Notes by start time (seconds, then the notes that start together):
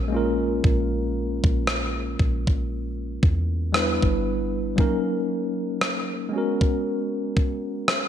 Already playing: A#1 G#3 B3 C#4 F#4 A#4
0.08 G#3 A#3
0.12 C#4 F4
0.17 A#4
0.64 A#1, kick
1.44 A#1, kick
1.67 cross-stick
2.19 A#1, kick
2.47 kick
3.23 E2, kick
3.72 G3 B3 D4 E4, cross-stick
3.77 B4
4.02 G1, kick
4.76 F#3 A#3 C#4 D#4, kick
4.80 A#4
5.81 cross-stick
6.29 G#3 B3
6.33 C#4 F#4
6.38 A#4
6.61 kick
7.37 kick
7.88 cross-stick